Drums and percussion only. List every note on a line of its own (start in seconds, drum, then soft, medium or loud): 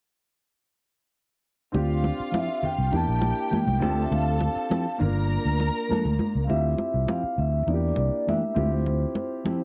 1.74 muted conga soft
2.04 muted conga soft
2.34 high conga medium
2.63 low conga medium
2.93 muted conga soft
3.21 muted conga soft
3.53 high conga medium
3.68 high conga soft
3.82 high conga medium
4.12 muted conga soft
4.41 muted conga soft
4.71 high conga medium
5.01 low conga medium
5.60 muted conga soft
5.92 high conga medium
6.05 high conga soft
6.19 high conga medium
6.50 muted conga soft
6.78 muted conga soft
7.08 high conga medium
7.68 muted conga soft
7.96 muted conga soft
8.29 high conga medium
8.56 high conga medium
8.86 muted conga soft
9.15 muted conga soft
9.46 high conga medium